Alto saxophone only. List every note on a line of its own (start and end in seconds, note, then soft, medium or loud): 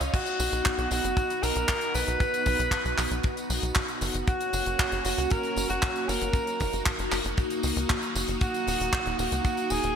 0.14 0.87 F#4 loud
0.92 1.45 F#4 loud
1.43 1.96 A#4 loud
1.95 3.50 B4 loud
4.28 5.01 F#4 loud
5.05 5.33 F#4 loud
5.31 5.69 A#4 loud
5.70 6.10 F#4 loud
6.08 6.86 A#4 loud
8.42 9.15 F#4 loud
9.19 9.72 F#4 loud
9.71 9.96 G#4 loud